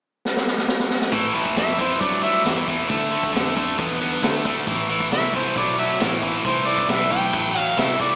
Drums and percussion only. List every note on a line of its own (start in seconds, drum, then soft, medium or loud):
0.25 snare medium
0.37 snare medium
0.47 snare medium
0.58 snare medium
0.68 snare medium
0.80 snare medium
0.90 snare medium
1.01 snare medium
1.12 kick loud
1.12 closed hi-hat medium
1.34 closed hi-hat medium
1.45 kick medium
1.56 snare loud
1.56 closed hi-hat medium
1.79 kick medium
1.79 closed hi-hat medium
2.01 kick loud
2.01 closed hi-hat medium
2.23 closed hi-hat medium
2.45 snare loud
2.45 closed hi-hat medium
2.68 kick medium
2.68 closed hi-hat medium
2.90 kick medium
2.90 closed hi-hat medium
3.12 closed hi-hat medium
3.23 kick medium
3.35 snare loud
3.35 closed hi-hat medium
3.57 kick medium
3.57 closed hi-hat medium
3.79 kick loud
3.79 closed hi-hat medium
4.01 closed hi-hat medium
4.23 snare loud
4.23 closed hi-hat medium
4.45 kick medium
4.45 closed hi-hat medium
4.67 kick loud
4.67 closed hi-hat medium
4.89 closed hi-hat medium
5.00 kick medium
5.11 snare loud
5.11 closed hi-hat medium
5.34 kick medium
5.34 closed hi-hat medium
5.56 kick loud
5.56 closed hi-hat medium
5.78 closed hi-hat medium
6.00 snare loud
6.00 closed hi-hat medium
6.22 kick medium
6.22 closed hi-hat medium
6.45 kick medium
6.45 closed hi-hat medium
6.67 closed hi-hat medium
6.78 kick medium
6.89 snare loud
6.89 closed hi-hat medium
7.11 kick medium
7.11 closed hi-hat medium
7.33 kick loud
7.33 closed hi-hat medium
7.56 closed hi-hat medium
7.78 snare loud
7.78 closed hi-hat medium
8.00 kick medium
8.00 closed hi-hat medium